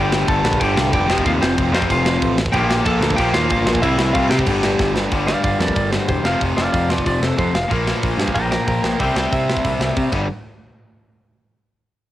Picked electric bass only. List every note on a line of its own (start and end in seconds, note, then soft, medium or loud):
0.00 0.23 G1 loud
0.28 0.42 G1 medium
0.45 0.58 A#1 loud
0.61 0.74 G1 loud
0.77 0.90 C2 medium
0.93 1.06 F1 medium
1.09 1.22 F1 medium
1.25 1.39 D#2 loud
1.42 1.55 F1 medium
1.58 1.71 F1 medium
1.72 1.86 F2 loud
1.91 2.17 F1 loud
2.22 2.49 A1 medium
2.54 2.81 A#1 loud
2.86 2.99 A#1 medium
3.01 3.15 D2 loud
3.19 3.32 A#1 loud
3.34 3.47 D#2 medium
3.51 3.64 G1 medium
3.66 3.83 A#1 loud
3.83 3.96 C2 loud
3.98 4.12 C2 medium
4.14 4.28 C2 medium
4.29 4.44 C3 loud
4.47 4.74 G1 medium
4.79 5.06 G1 medium
5.12 5.33 G1 loud
5.44 5.54 G1 medium
5.59 5.70 F2 medium
5.76 5.97 G1 medium
6.09 6.19 E1 medium
6.24 6.35 F1 medium
6.41 6.52 F1 loud
6.57 6.67 F1 medium
6.73 6.95 F2 medium
7.06 7.16 F1 medium
7.21 7.32 F1 medium
7.38 7.49 F2 medium
7.53 7.64 F1 medium
7.71 7.92 A#1 loud
8.03 8.14 A#1 medium
8.17 8.28 G2 medium
8.35 8.56 A#1 medium
8.67 8.78 A#1 medium
8.83 8.94 A#1 medium
9.00 9.10 C2 loud
9.15 9.26 C2 medium
9.32 9.53 C3 medium
9.65 9.75 C2 medium
9.79 9.90 C2 medium
9.97 10.07 C3 medium
10.12 10.27 G1 medium